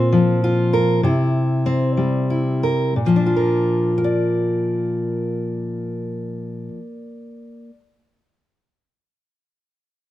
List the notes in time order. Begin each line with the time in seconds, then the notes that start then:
Already playing: A#2 C4 F4
0.12 F3
0.44 F4
0.73 A#4
1.03 C3 E4
1.66 C4
1.97 G3
2.30 E4
2.63 A#4
2.96 A#2
3.06 F3
3.16 D4
3.26 F4
3.36 A#4
3.98 A#4
4.04 D5